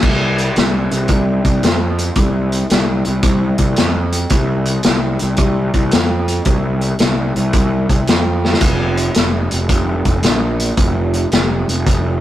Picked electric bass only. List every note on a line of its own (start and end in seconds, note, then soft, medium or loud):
0.04 0.49 C2 medium
0.57 0.87 C2 medium
0.92 1.07 C2 medium
1.09 1.40 C2 medium
1.45 1.60 C2 medium
1.63 2.09 F2 medium
2.16 2.63 C2 medium
2.71 3.02 C2 medium
3.07 3.22 C2 medium
3.23 3.54 C2 medium
3.59 3.74 C2 medium
3.79 4.24 F2 medium
4.31 4.77 C2 loud
4.87 5.17 C2 medium
5.22 5.37 C2 medium
5.38 5.69 C2 medium
5.75 5.90 C2 medium
5.93 6.39 F2 medium
6.46 6.93 C2 medium
7.00 7.31 C2 medium
7.36 7.52 C2 medium
7.54 7.85 C2 medium
7.90 8.05 C2 medium
8.09 8.55 F2 medium
8.61 9.08 F1 medium
9.16 9.47 F1 medium
9.52 9.68 F1 medium
9.70 10.01 F1 medium
10.06 10.22 F1 medium
10.24 10.70 A#1 medium
10.78 11.25 F1 medium
11.33 11.64 F1 medium
11.68 11.84 F1 medium
11.87 12.18 F1 medium